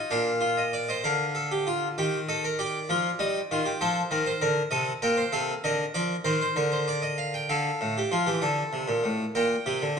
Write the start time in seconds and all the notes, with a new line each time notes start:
Already playing: D#4
0.11 A#2 D4 F5
0.41 F4
0.57 D#5
0.73 D5
0.89 C5 D#5
1.04 D3 A#4 F5
1.35 A4
1.51 G4
1.67 F4
1.98 D#3 G4 G5
2.29 A4 D#5
2.44 A#4
2.59 G4 D5
2.89 F3 F4
3.19 G3 D#4
3.51 D#3 F4
3.66 G4
3.81 F3 A4 C5
4.11 D#3 A#4
4.26 C5
4.41 D3 A#4
4.71 C3 A4 D#5
5.02 A#2 A#4 G5
5.17 C5
5.32 C3 A4 F5
5.64 D3 A#4 D#5
5.94 F3 D5
6.25 D#3 A#4 C5
6.41 C5
6.56 D3 A#4
6.72 C5
6.88 D5
7.02 D#5
7.18 F5
7.34 G5
7.49 D3 A4 F5
7.81 A2
7.98 G4
8.12 F3 F4
8.26 E3 G4
8.42 D3 A4
8.73 C3
8.88 A#2
9.04 A2
9.35 A#2 A#4 G5
9.66 C3 G4
9.82 D3